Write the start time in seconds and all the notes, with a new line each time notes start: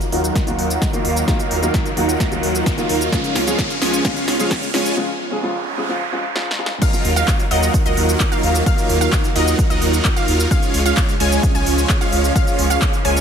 Already playing: D#3 F#3 A#3, riser
0.01 closed hi-hat, shaker
0.12 D#2 D#3 F#3 A#3 D#4 F4 A#4 F#5, open hi-hat
0.24 closed hi-hat, shaker
0.35 kick, snare, closed hi-hat, shaker
0.47 C#2 D#3 F#3 A#3 D#4 F4 A#4 F#5, closed hi-hat, shaker
0.59 D#2, open hi-hat
0.70 closed hi-hat, shaker
0.82 kick, snare, closed hi-hat, shaker
0.93 D#3 F#3 A#3 D#4 F4 A#4 F5, closed hi-hat, shaker
1.05 D#2, open hi-hat
1.16 closed hi-hat, shaker
1.27 D#3 F#3 A#3 D#4 F4 A#4 F5, kick, snare, closed hi-hat, shaker
1.39 closed hi-hat, shaker
1.51 D#2, open hi-hat
1.62 D#3 F#3 A#3 D#4 F4 F#4 A#4 F5, closed hi-hat, shaker
1.74 kick, snare, closed hi-hat, shaker
1.86 closed hi-hat, shaker
1.96 D#2 D#3 F#3 A#3 D#4 F4 A#4 F#5, open hi-hat
2.09 closed hi-hat, shaker
2.20 kick, snare, closed hi-hat, shaker
2.31 C#2 D#3 F#3 A#3 D#4 F4 A#4 F#5, closed hi-hat, shaker
2.43 D#2, open hi-hat
2.55 closed hi-hat, shaker
2.66 kick, snare, closed hi-hat, shaker
2.77 D#3 F#3 A#3 D#4 F4 A#4 F5, closed hi-hat, shaker
2.89 D#2, open hi-hat
3.01 closed hi-hat, shaker
3.12 C#3 F3 G#3 C#4 F4 C#5, kick, snare, closed hi-hat, shaker
3.24 closed hi-hat, shaker
3.35 C#2, snare, open hi-hat
3.46 C#3 F3 G#3 C#4 F4 G#4 C#5 F5, closed hi-hat, shaker
3.59 kick, snare, closed hi-hat, shaker
3.70 closed hi-hat, shaker
3.81 C#2 C#3 F3 G#3 C#4 F4 C#5 G#5, snare, open hi-hat
3.93 closed hi-hat, shaker
4.04 C#3 F3 G#3 C#4 F4 C#5, kick, snare, closed hi-hat, shaker
4.16 B1, closed hi-hat, shaker
4.28 C#2, snare, open hi-hat
4.39 C#3 F3 G#3 C#4 F4 G#4 C#5 F5, closed hi-hat, shaker
4.51 kick, snare, closed hi-hat, shaker
4.62 closed hi-hat, shaker
4.73 C#2 C#3 F3 G#3 C#4 F4 C#5 G#5, snare, open hi-hat
4.86 closed hi-hat, shaker
4.96 C#3 F3 G#3 F4, noise sweep
5.31 C#3 F3 G#3 G#4
5.43 C#3 F3 G#3 F4
5.77 C#3 F3 G#3 G#4
5.89 C#3 F3 G#3 F4
6.12 C#3 F3 G#3 F4
6.35 C#3 F3 G#3 F4, snare
6.51 snare
6.58 C#3 F3 G#3 F4
6.66 snare
6.82 D#3 F#3 A#3 D#4 F4 A#4 F5, kick, closed hi-hat, crash, shaker
6.93 closed hi-hat, shaker
7.05 D#2, open hi-hat
7.16 F#3 D#4 F4 A#4 F5, closed hi-hat, shaker
7.28 kick, clap, closed hi-hat, shaker
7.39 closed hi-hat, shaker
7.51 D#2 F#3 D#4 F4 A#4 D#5 F#5, open hi-hat
7.63 closed hi-hat, shaker
7.74 kick, closed hi-hat, shaker
7.86 C#2 F#3 D#4 F4 A#4 D#5 F#5, closed hi-hat, shaker
7.97 D#2, open hi-hat
8.09 closed hi-hat, shaker
8.20 kick, clap, closed hi-hat, shaker
8.32 F#3 D#4 F4 A#4 F5, closed hi-hat, shaker
8.43 D#2, open hi-hat
8.55 closed hi-hat, shaker
8.66 F#3 D#4 F4 A#4 F5, kick, closed hi-hat, shaker
8.78 closed hi-hat, shaker
8.89 D#2, open hi-hat
9.01 F#3 D#4 F4 A#4 F5, closed hi-hat, shaker
9.12 kick, clap, closed hi-hat, shaker
9.24 closed hi-hat, shaker
9.36 D#2 F#3 D#4 F4 A#4 D#5 F#5, open hi-hat
9.47 closed hi-hat, shaker
9.59 kick, closed hi-hat, shaker
9.70 C#2 F#3 D#4 F4 A#4 D#5 F#5, closed hi-hat, shaker
9.82 D#2, open hi-hat
9.93 closed hi-hat, shaker
10.05 kick, clap, closed hi-hat, shaker
10.16 F#3 D#4 F4 A#4 F5, closed hi-hat, shaker
10.28 D#2, open hi-hat
10.40 closed hi-hat, shaker
10.51 C#3 F3 G#3 C#4 F5, kick, closed hi-hat, shaker
10.63 closed hi-hat, shaker
10.74 C#2, open hi-hat
10.86 G#3 C#4 F4 C#5 F5, closed hi-hat, shaker
10.97 kick, clap, closed hi-hat, shaker
11.09 closed hi-hat, shaker
11.20 C#2 G#3 C#4 F4 C#5 G#5, open hi-hat
11.32 closed hi-hat, shaker
11.43 kick, closed hi-hat, shaker
11.55 B1 G#3 C#4 F4 C#5 G#5, closed hi-hat, shaker
11.66 C#2, open hi-hat
11.78 closed hi-hat, shaker
11.89 kick, clap, closed hi-hat, shaker
12.01 G#3 C#4 F4 C#5 F5, closed hi-hat, shaker
12.12 C#2, open hi-hat
12.24 closed hi-hat, shaker
12.36 G#3 A#3 F4 F5, kick, closed hi-hat, shaker
12.47 closed hi-hat, shaker
12.59 C#2, open hi-hat
12.70 G#3 C#4 F4 C#5 F5, closed hi-hat, shaker
12.82 kick, clap, closed hi-hat, shaker
12.93 closed hi-hat, shaker
13.05 C#2 G#3 C#4 F4 C#5 G#5, open hi-hat
13.16 closed hi-hat, shaker